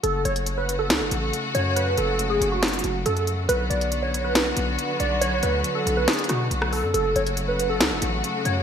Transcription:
<<
  \new Staff \with { instrumentName = "Synth keys" } { \time 4/4 \key fis \minor \tempo 4 = 139 a'8 cis''8. b'8 a'4.~ a'16 cis''8 | b'8 a'8. gis'8 fis'4~ fis'16 a'8 r8 | b'8 d''8. cis''8 b'4.~ b'16 d''8 | cis''8 b'8. a'8 b'16 gis'8 fis'4 a'8 |
a'8 cis''8. b'8 a'4.~ a'16 cis''8 | }
  \new Staff \with { instrumentName = "String section" } { \time 4/4 \key fis \minor << { <cis a fis'>1~ | <cis a fis'>1 | <d b fis'>1~ | <d b fis'>1 |
<cis a fis'>1 | } \\ { fis1~ | fis1~ | fis1~ | fis1 |
fis1 | } >> }
  \new Staff \with { instrumentName = "808-style bass" } { \clef bass \time 4/4 \key fis \minor fis,,8 fis,,4. cis,16 fis,,16 a,,8 r8 fis,8~ | fis,8 fis,,4 fis,,4 fis,,8 fis,4 | b,,8 b,,2 b,,8 r8 b,,8~ | b,,8 d,8 r8 b,,8 r8 b,8 b,,8. fis,16 |
fis,,8 fis,,4. cis,16 fis,,16 a,,8 r8 fis,8 | }
  \new DrumStaff \with { instrumentName = "Drums" } \drummode { \time 4/4 hh8 hh16 hh16 hh8 hh8 <hh sn>8 hh8 hh8 hh8 | hh8 hh8 hh8 hh8 <hh sn>32 hh32 hh32 hh32 hh8 hh16 hh16 hh8 | hh8 hh16 hh16 hh8 hh8 <hh sn>8 hh8 hh8 hh8 | hh8 hh8 hh8 hh8 <hh sn>32 hh32 hh32 hh32 <hh ss>8 hh16 ss16 hho8 |
hh8 hh16 hh16 hh8 hh8 <hh sn>8 hh8 hh8 hh8 | }
>>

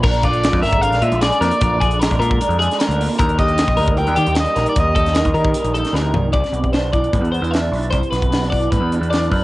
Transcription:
<<
  \new Staff \with { instrumentName = "Overdriven electric guitar" } { \time 4/4 \key c \lydian \tempo 4 = 152 r8 d''4 e''8 f''8 e''8 d''8 d''8~ | d''4 r2. | r8 ees''4. g''4 ees''8. d''16 | ees''2. r4 |
r1 | r1 | }
  \new Staff \with { instrumentName = "Clean electric guitar" } { \time 4/4 \key c \lydian bes'8 f'4 bes'4 f'8 aes'8 bes'8~ | bes'8 aes'8 bes'8 bes'4 aes'8 bes'4 | bes'8 g'4 bes'4 g'8 a'8 bes'8~ | bes'8 a'8 bes'8 bes'4 a'8 bes'4 |
d''4 c''8 d''4 c''8 e''4 | c''8 b'4 d''8 b'4 d''8 b'8 | }
  \new Staff \with { instrumentName = "Clean electric guitar" } { \clef bass \time 4/4 \key c \lydian << { d'4 aes4 d'8 aes4 r8 | d'4 aes4 d'8 aes4 r8 | r8 ees'4 g4 ees'8 g4~ | g8 ees'4 g4 ees'4. |
r8 b8 d'4 b8 b16 d'16 d'8 d'8 | r8 b8 b16 d'8. b8 d'8 d'8 d'8 | } \\ { bes,8 d4 d4. d8 bes,8~ | bes,8 d4 d4. d8 bes,8 | ees,4 ees4 ees4. ees8 | ees,4 ees4 ees4 a,8 bes,8 |
c4. e2~ e8 | c4. e2~ e8 | } >> }
  \new Staff \with { instrumentName = "Picked electric bass" } { \clef bass \time 4/4 \key c \lydian bes,,4~ bes,,16 f,16 aes,,8. bes,,16 bes,16 bes,,8 r16 f,16 r16 | bes,,4~ bes,,16 bes,,16 bes,8 r16 f,8 r8 d,8 r16 | ees,4~ ees,16 bes,,16 d,8. ees,16 ees16 ees,8 r16 bes,,16 r16 | ees,4~ ees,16 ees,16 ees8 r16 bes,,8 r16 d,8 c,8 |
c,16 r16 b,,4. a,16 e,8 e,8. b,,8 | c,16 r16 b,,4. a,16 e,8 e,8. fis,8 | }
  \new DrumStaff \with { instrumentName = "Drums" } \drummode { \time 4/4 <cymc bd>16 hh16 <hh bd>16 hh16 <hh sn>16 bd16 <hho sn>16 <hh bd>16 hh16 <hh sn>16 hh16 hh16 <hh sn>16 hh16 <hh sn>16 hh16 | <hh bd>8 <hh bd>16 hh16 <hh sn>16 <hh bd>16 hh16 bd16 hh16 hh16 hh16 <hh sn>16 <hh sn>16 hh16 hho8 | <hh bd>16 hh16 <hh bd>16 hh16 <hh sn>16 bd16 hho16 <hh bd>16 hh16 hh16 hh16 hh16 <hh sn>16 hh16 <hh sn>16 hh16 | <hh bd>8 <hh bd>16 <hh sn>16 <hh sn>16 <hh bd>16 hh16 bd16 hh16 hh16 hh16 <hh sn>16 sn8 tomfh8 |
<hh bd>16 <hh sn>16 hh16 <hh bd>16 <hh sn>8 <hh bd>16 hh16 <hh bd>16 hh16 hh16 hh16 <hh sn>8 hho16 hh16 | <hh bd>16 hh16 <hh sn>16 <hh bd>16 <hh sn>16 <hh sn>16 <hho bd>16 hh16 <hh bd>8 hh16 hh16 <hh sn>16 hh16 <hho bd>8 | }
>>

